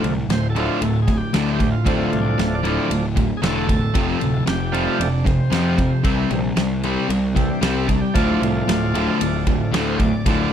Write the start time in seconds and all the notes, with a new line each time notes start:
Already playing: D3 F3 A3
0.03 C2 D2 A2, ride
0.29 D1 D2 A2 C5, snare, ride
0.50 A4
0.55 D2 A2 D3 F3 A3, ride
0.69 F4
0.81 D1 D2 A2 A4, ride
1.02 G#4
1.07 D2 A2, kick, ride
1.17 G4
1.34 D2 A2 D3 D4, snare, ride
1.54 G4
1.60 D2 A2, kick, ride
1.72 F4
1.85 D1 D2 A2 D3 F3 A3 C4, kick, ride
2.03 F4
2.09 C2 D2 A2, ride
2.22 D4
2.38 D1 D2 A2 A3, snare, ride
2.55 F3 D4
2.63 D2 A2 D3, ride
2.90 D1 D2 A2, ride
3.16 D2 A2, kick, ride
3.37 G#4
3.42 E1 D2 A2 D3 A4, snare, ride
3.68 D2 A2, kick, ride
3.94 F1 F2 C3 F3, kick, ride
4.21 D1 F2 C3, ride
4.46 F1 F2 C3 G4, snare, ride
4.72 F2 C3 F3 G3 A3 F4, ride
4.99 F1 F2 C3 D4, ride
5.24 F2 C3 C4, kick, ride
5.50 F2 C3 F3, snare, ride
5.76 F2 C3, kick, ride
6.04 C2 C3 E3 G3 C4, kick, ride
6.30 A#1 C3 G3, ride
6.56 C2 C3 G3, snare, ride
6.83 C3 G3 C4, ride
7.09 C2 C3 G3, ride
7.36 C3 E3 G3 C4 A4, kick, ride
7.51 D4
7.61 C2 C3 G3 C4 G4, snare, ride
7.77 A4
7.88 C3 G3 D4, kick, ride
8.01 G4
8.14 D1 D2 A2 D3 F3 A3 D4 F4, kick, ride
8.41 C2 D2 A2, ride
8.68 D1 D2 A2, snare, ride
8.94 D2 A2 D3, ride
9.20 D1 D2 A2, ride
9.47 D2 A2 F3 A3 D4, kick, ride
9.73 D2 A2 D3 A4, snare, ride
9.88 C5
9.95 C#5
9.99 D2 A2 D5, kick, ride
10.25 D1 D2 A2 D3 F3 A3 D4, kick, ride